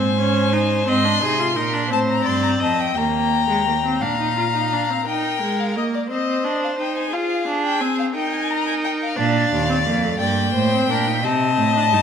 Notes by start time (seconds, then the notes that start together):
Already playing: G#2 C4 C5 G#5
0.20 C#4
0.54 D#4
0.88 G#2 C4 D#5 C6
1.05 D4
1.22 C3 D#4 G#4
1.39 F4
1.55 A#2 D#4 A#4
1.73 D4
1.90 A2 C4 C5 A5
2.09 A#5
2.25 G2 D5 C6
2.43 A#5
2.60 F2 D#5 A5
2.80 G5
2.96 D#2 A#3 G5 A#5
3.49 G#3
3.67 A#3
3.85 C4
4.01 A#2 D4 F5 A#5
4.20 D#4
4.37 F4
4.55 D#4
4.73 D4
4.91 C4
5.06 D#4 A#4 G5
5.42 G#3
5.60 F5
5.76 A#3 D#5
5.94 D5
6.10 C4 C5 D#5
6.44 D4
6.64 F5
6.79 D#4 G5
6.98 G#5
7.11 F4 G#4 F5
7.47 D4
7.65 G5
7.81 C4 G#5
7.99 F5
8.15 D#4 A#4 G5
8.33 G#5
8.51 A#5
8.67 G#5
8.84 G5
9.03 F5
9.17 A#2 D4 D5 F5
9.52 D#2
9.70 C4
9.86 F2 A#3
10.04 A3
10.19 G2 A#3 D5 G5
10.54 A2 C5
10.73 C4
10.88 A#2 D4 A#4
11.07 D#4
11.23 C3 C4 D#5 A5
11.58 A2
11.77 D4
11.92 G2 D#4